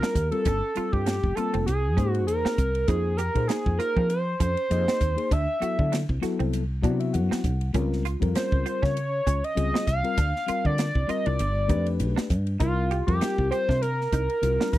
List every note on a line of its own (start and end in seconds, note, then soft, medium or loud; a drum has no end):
0.00 0.14 G3 medium
0.00 0.14 C4 medium
0.00 0.27 D4 medium
0.00 0.15 F4 medium
0.00 0.15 A#4 medium
0.00 0.29 A#4 medium
0.00 snare loud
0.15 0.30 D#2 medium
0.15 kick medium
0.15 hi-hat pedal medium
0.15 ride medium
0.31 0.45 G3 medium
0.31 0.46 C4 medium
0.31 0.46 F4 medium
0.31 0.94 A4 medium
0.31 0.46 A#4 medium
0.31 ride medium
0.45 0.61 G1 medium
0.45 0.71 C#4 medium
0.45 kick medium
0.45 hi-hat pedal medium
0.45 ride medium
0.75 1.15 G3 medium
0.75 1.16 C4 soft
0.75 1.16 F4 medium
0.75 1.02 F4 medium
0.75 1.16 A4 medium
0.75 muted fretless electric bass stroke soft
0.75 hi-hat pedal medium
0.75 ride medium
0.92 1.19 G2 medium
0.92 1.37 G4 medium
0.92 kick medium
1.06 1.31 C#4 medium
1.06 snare medium
1.06 hi-hat pedal medium
1.06 ride medium
1.23 1.35 F1 medium
1.23 kick medium
1.35 1.67 G3 medium
1.35 1.68 A#3 medium
1.35 1.67 C4 medium
1.35 1.51 F4 medium
1.35 1.68 F4 medium
1.35 1.66 A4 medium
1.35 muted fretless electric bass stroke soft
1.35 hi-hat pedal medium
1.35 ride soft
1.54 1.66 F1 medium
1.54 1.79 C4 medium
1.54 ride medium
1.66 1.98 C2 medium
1.66 2.10 G#4 medium
1.66 hi-hat pedal medium
1.66 ride medium
1.97 2.28 G#2 medium
1.97 2.56 A#3 medium
1.97 2.22 C#4 medium
1.97 2.56 D#4 medium
1.97 2.56 G#4 medium
1.97 2.57 C5 medium
1.97 kick medium
1.97 hi-hat pedal medium
1.97 ride soft
2.10 2.24 F#4 medium
2.15 ride soft
2.27 2.43 E2 medium
2.27 2.89 A#4 medium
2.27 hi-hat pedal medium
2.27 ride medium
2.45 2.70 C4 medium
2.45 muted fretless electric bass stroke soft
2.45 snare loud
2.58 2.84 C2 medium
2.58 kick medium
2.58 hi-hat pedal medium
2.58 ride soft
2.75 ride medium
2.88 3.29 F2 loud
2.88 3.18 A#3 medium
2.88 3.18 D#4 medium
2.88 3.14 D#4 medium
2.88 3.19 G#4 medium
2.88 3.18 G#4 medium
2.88 3.18 C5 medium
2.88 kick medium
2.88 hi-hat pedal medium
2.88 ride medium
3.17 3.44 G4 medium
3.17 3.49 A#4 medium
3.17 hi-hat pedal medium
3.17 ride soft
3.35 3.47 A#2 medium
3.35 4.11 A#3 medium
3.35 4.12 D#4 medium
3.35 4.12 G#4 medium
3.35 4.12 C5 medium
3.35 kick medium
3.35 ride soft
3.48 3.74 D#4 medium
3.48 3.78 G#4 medium
3.48 snare medium
3.48 hi-hat pedal medium
3.48 ride medium
3.66 3.78 F2 medium
3.66 kick medium
3.79 3.94 F4 medium
3.79 4.08 A#4 medium
3.79 hi-hat pedal medium
3.79 ride medium
3.96 4.34 F3 medium
3.96 4.22 C4 medium
3.96 kick medium
4.10 5.34 C5 medium
4.10 hi-hat pedal medium
4.10 ride medium
4.40 4.55 F2 medium
4.40 4.65 C#4 medium
4.40 kick medium
4.40 hi-hat pedal medium
4.40 ride medium
4.57 ride soft
4.70 4.85 F2 medium
4.70 5.00 A#3 medium
4.70 5.00 D#4 medium
4.70 5.00 G#4 medium
4.70 5.01 D#5 medium
4.70 hi-hat pedal medium
4.70 ride medium
4.88 5.13 C4 medium
4.88 snare loud
5.01 5.16 D#2 medium
5.01 kick medium
5.01 hi-hat pedal medium
5.01 ride medium
5.16 5.31 A#3 medium
5.16 5.31 D#4 medium
5.16 5.31 G#4 medium
5.16 5.32 C5 medium
5.16 ride medium
5.31 5.46 D2 medium
5.31 5.57 D4 medium
5.31 5.93 E5 loud
5.31 kick medium
5.31 hi-hat pedal medium
5.31 ride medium
5.60 6.01 F#3 medium
5.60 6.01 B3 soft
5.60 6.02 E4 medium
5.60 5.87 F#4 medium
5.60 6.02 A4 medium
5.60 muted fretless electric bass stroke soft
5.60 hi-hat pedal medium
5.60 ride medium
5.79 6.05 D3 medium
5.79 kick medium
5.92 6.17 D4 medium
5.92 snare medium
5.92 hi-hat pedal medium
5.92 ride medium
6.09 6.21 C2 medium
6.09 kick medium
6.21 6.62 F#3 medium
6.21 6.62 B3 medium
6.21 6.62 E4 medium
6.21 6.37 F#4 medium
6.21 6.63 A4 medium
6.21 muted fretless electric bass stroke soft
6.21 snare soft
6.21 hi-hat pedal medium
6.21 ride medium
6.39 6.85 C2 medium
6.39 6.64 C4 medium
6.39 ride medium
6.53 hi-hat pedal medium
6.53 ride medium
6.82 7.16 C3 medium
6.82 7.41 F#3 medium
6.82 7.42 B3 medium
6.82 7.09 D4 medium
6.82 7.42 E4 medium
6.82 7.42 F#4 loud
6.82 6.99 D5 medium
6.82 kick medium
6.82 hi-hat pedal medium
6.82 ride soft
7.00 7.13 E5 medium
7.00 ride medium
7.13 7.29 F#2 medium
7.13 7.70 F#5 medium
7.13 hi-hat pedal medium
7.13 ride medium
7.31 7.56 C4 medium
7.31 muted fretless electric bass stroke soft
7.31 snare medium
7.44 7.70 C2 medium
7.44 kick medium
7.44 hi-hat pedal medium
7.44 ride soft
7.61 ride soft
7.73 8.15 C#2 medium
7.73 8.03 G3 medium
7.73 8.03 C4 medium
7.73 7.99 C#4 medium
7.73 8.04 F4 medium
7.73 8.04 A#4 medium
7.73 kick medium
7.73 hi-hat pedal medium
7.73 ride medium
7.93 snare soft
8.05 8.30 F4 medium
8.05 hi-hat pedal medium
8.05 ride soft
8.20 8.33 F2 medium
8.20 8.97 G3 medium
8.20 8.97 C4 medium
8.20 8.97 F4 medium
8.20 8.98 A#4 medium
8.20 kick medium
8.20 ride soft
8.35 8.60 C#4 medium
8.35 8.84 C5 medium
8.35 snare medium
8.35 hi-hat pedal medium
8.35 ride medium
8.52 8.63 C#2 medium
8.52 kick medium
8.66 8.80 F4 medium
8.66 hi-hat pedal medium
8.66 ride medium
8.82 9.20 C#3 medium
8.82 9.07 C#4 medium
8.82 9.46 C#5 medium
8.82 kick medium
8.82 snare soft
8.97 hi-hat pedal medium
8.97 ride medium
9.27 9.41 C#2 medium
9.27 9.51 C#4 medium
9.27 kick medium
9.27 hi-hat pedal medium
9.27 ride soft
9.44 9.86 D#5 loud
9.44 ride medium
9.55 9.71 C#2 medium
9.55 9.85 G3 medium
9.55 9.85 C4 medium
9.55 9.86 F4 medium
9.55 9.86 G#4 medium
9.55 hi-hat pedal medium
9.55 ride medium
9.74 9.99 C4 medium
9.74 snare loud
9.87 10.02 C2 medium
9.87 10.67 F5 loud
9.87 kick medium
9.87 hi-hat pedal medium
9.87 ride medium
10.03 10.17 G3 medium
10.03 10.17 C4 medium
10.03 10.18 F4 medium
10.03 10.18 A#4 medium
10.03 ride soft
10.18 10.32 D2 medium
10.18 10.42 D4 medium
10.18 kick medium
10.18 hi-hat pedal medium
10.18 ride medium
10.36 snare soft
10.47 10.87 G3 medium
10.47 10.87 C4 soft
10.47 10.88 F4 soft
10.47 10.73 F4 medium
10.47 10.88 A#4 medium
10.47 muted fretless electric bass stroke soft
10.47 hi-hat pedal medium
10.47 ride medium
10.65 10.91 D3 medium
10.65 11.11 D5 medium
10.65 kick medium
10.78 11.04 D4 medium
10.78 snare medium
10.78 hi-hat pedal medium
10.78 ride medium
10.95 11.07 C2 medium
10.95 kick medium
11.07 11.38 G3 medium
11.07 11.39 C4 medium
11.07 11.39 F4 medium
11.07 11.23 F4 medium
11.07 11.39 A#4 medium
11.07 11.27 D#5 medium
11.07 hi-hat pedal medium
11.07 ride medium
11.26 11.38 C2 medium
11.26 11.51 D4 medium
11.26 11.86 D5 medium
11.26 ride medium
11.39 11.71 G1 medium
11.39 hi-hat pedal medium
11.39 ride medium
11.68 12.02 F2 medium
11.68 12.27 A3 medium
11.68 12.28 D4 medium
11.68 11.94 D#4 medium
11.68 12.28 G4 medium
11.68 12.28 B4 medium
11.68 kick medium
11.68 hi-hat pedal medium
11.68 ride soft
11.86 ride medium
12.00 12.14 B1 medium
12.00 hi-hat pedal medium
12.00 ride medium
12.16 12.41 D4 medium
12.16 snare loud
12.30 12.56 G2 medium
12.30 kick medium
12.30 hi-hat pedal medium
12.30 ride soft
12.47 ride soft
12.59 13.01 C2 medium
12.59 12.89 G3 medium
12.59 12.89 C4 medium
12.59 12.85 D#4 medium
12.59 13.04 F4 medium
12.59 12.90 F4 medium
12.59 12.90 A#4 medium
12.59 kick medium
12.59 hi-hat pedal medium
12.59 ride medium
12.91 13.16 G4 medium
12.91 hi-hat pedal medium
12.91 ride soft
13.07 13.19 F2 medium
13.07 13.83 G3 medium
13.07 13.84 C4 medium
13.07 13.84 F4 medium
13.07 13.48 G4 medium
13.07 13.84 A#4 medium
13.07 kick medium
13.07 ride soft
13.21 13.46 D#4 medium
13.21 snare medium
13.21 hi-hat pedal medium
13.21 ride medium
13.38 13.50 C2 medium
13.38 kick medium
13.51 13.66 G4 medium
13.51 13.83 C5 loud
13.51 hi-hat pedal medium
13.51 ride medium
13.69 14.06 C3 medium
13.69 13.94 D4 medium
13.69 kick medium
13.69 snare soft
13.82 14.72 A#4 medium
13.82 hi-hat pedal medium
13.82 ride medium
14.01 snare soft
14.12 14.27 C2 medium
14.12 14.38 D#4 medium
14.12 kick medium
14.12 hi-hat pedal medium
14.12 ride soft
14.30 ride medium
14.42 14.57 C2 medium
14.42 14.72 G3 medium
14.42 14.72 C4 medium
14.42 14.72 F4 medium
14.42 14.73 A#4 medium
14.42 hi-hat pedal medium
14.42 ride medium
14.60 14.78 D4 medium
14.60 snare loud
14.73 14.78 D#2 medium
14.73 14.78 C5 medium
14.73 kick medium
14.73 hi-hat pedal medium
14.73 ride medium